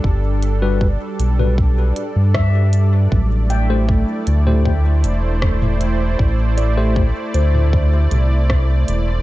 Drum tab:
HH |--x---x---x---x-|--x---x---x---x-|--x---x---x---x-|
SD |------------r---|------------r---|------------r---|
T2 |-------o--------|-------o-----o--|-------o--o-----|
BD |o---o---o---o---|o---o---o---o---|o---o---o---o---|